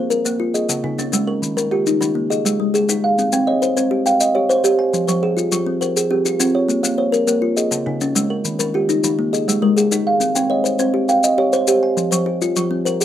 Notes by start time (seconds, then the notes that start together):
Already playing: A#3 C5 F5
0.10 A#4, maracas
0.25 A#3, maracas
0.40 F4
0.54 G#4 D#5, maracas
0.69 C#3, maracas
0.84 C#3 D#4
0.98 C#4, maracas
1.12 G#3 C#4, maracas
1.27 A#4
1.42 D#3, maracas
1.57 D#3 A#4, maracas
1.71 F4 G4
1.87 D#4, maracas
2.01 D#3 D#4, maracas
2.15 A#3
2.30 G#4 D#5, maracas
2.45 G#3, maracas
2.60 G#3
2.74 G#4, maracas
2.89 D#4 G#4, maracas
3.04 F5
3.19 C4, maracas
3.33 C4 G5, maracas
3.47 C#5 D#5
3.62 C5, maracas
3.77 C4 C5, maracas
3.91 G4
4.06 F5 G5, maracas
4.20 D#5, maracas
4.35 G4 C#5
4.49 C5, maracas
4.64 G4 C5, maracas
4.79 G#5
4.93 F3, maracas
5.07 F3 C5, maracas
5.23 G4 G#4
5.37 F4, maracas
5.52 F3 F4, maracas
5.66 C4
5.81 A#4 C5, maracas
5.96 G#4, maracas
6.11 C4 G4
6.25 F4, maracas
6.39 C4 F4, maracas
6.55 C#5
6.68 A#3, maracas
6.83 A#3 F5, maracas
6.98 C5 C#5
7.12 A#4, maracas
7.27 A#3 A#4, maracas
7.42 F4
7.57 G#4 D#5, maracas
7.71 C#3, maracas
7.86 C#3 D#4
8.01 C#4, maracas
8.15 G#3 C#4, maracas
8.30 A#4
8.45 D#3, maracas
8.59 D#3 A#4, maracas
8.74 F4 G4
8.89 D#4, maracas
9.04 D#3 D#4, maracas
9.19 A#3
9.33 G#4 D#5, maracas
9.48 G#3, maracas
9.62 G#3 A#4
9.77 G#4, maracas
9.91 D#4 G#4, maracas
10.07 F5
10.20 C4, maracas
10.35 C4 G5, maracas
10.50 C#5 D#5
10.64 C5, maracas
10.79 C4 C5, maracas
10.94 G4
11.09 F5 G5, maracas
11.24 D#5, maracas
11.38 G4 C#5
11.53 C5, maracas
11.67 G4 C5, maracas
11.83 G#5
11.97 F3, maracas
12.11 F3 C5, maracas
12.26 G4
12.42 F4, maracas
12.56 F3 F4, maracas
12.71 C4
12.85 A#4 C5, maracas
13.01 G#4, maracas